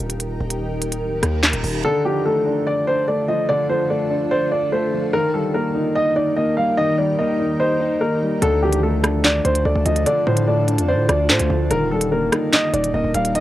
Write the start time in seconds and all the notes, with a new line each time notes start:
Already playing: D#3 D#4 G4 A#4
0.00 D#1
0.10 closed hi-hat
0.20 closed hi-hat
0.41 D#1
0.50 closed hi-hat
0.82 closed hi-hat
0.92 closed hi-hat
1.02 D1, reverse cymbal
1.23 D#2, cross-stick, closed hi-hat
1.43 snare, clap
1.53 D#1, closed hi-hat
1.64 D#1, open hi-hat
1.84 D3 D4 F4 A4
2.05 F3 G4
2.26 A3 A4
2.46 D4
2.67 D5
2.87 D4 C5
3.08 A3 D5
3.28 F3 D#5
3.49 D3 D5
3.69 F3 C5
3.90 A3 D5
4.10 D4
4.31 C5 D5
4.52 D4 D5
4.72 A3 C5
4.92 F3
5.13 D#3 D#4 G4 A#4
5.34 G3 A4
5.54 A#3 A#4
5.75 D#4
5.95 D#5
6.16 D#4 D5
6.37 A#3 D#5
6.57 G3 F5
6.77 D#3 D#5
6.98 G3 D5
7.19 A#3 D#5
7.39 D#4
7.60 C5 D#5
7.80 D#4
8.01 A#3 A#4
8.22 G3
8.42 D2 D3 D4 F4 A4, closed hi-hat
8.62 F3 G4
8.72 closed hi-hat
8.83 A3 A4
9.04 D4, cross-stick, closed hi-hat
9.24 D5, snare, clap
9.45 D2 D4 C5, closed hi-hat
9.55 closed hi-hat
9.65 D2 A3 D5
9.76 D2
9.86 D2 F3 D#5, closed hi-hat
9.96 closed hi-hat
10.06 D3 D5, closed hi-hat
10.27 A2 F3 C5
10.37 closed hi-hat
10.47 A3 D5
10.68 D4, closed hi-hat
10.78 F2, closed hi-hat
10.88 C5 D5
10.94 A2
11.09 D2 D4 D5, cross-stick, closed hi-hat
11.30 A2 A3 C5, snare, clap
11.40 D2, closed hi-hat
11.50 D2 F3
11.71 D#1 D#3 D#4 G4 A#4, closed hi-hat
11.91 G3 A4
12.01 closed hi-hat
12.12 A#3 A#4
12.32 D#4, cross-stick, closed hi-hat
12.53 D#5, snare, clap
12.73 D#1 D#4 D5, closed hi-hat
12.84 closed hi-hat
12.94 D#1 A#3 D#5
13.04 D#1
13.14 D#1 G3 F5, closed hi-hat
13.25 closed hi-hat
13.35 D#3 D#5, closed hi-hat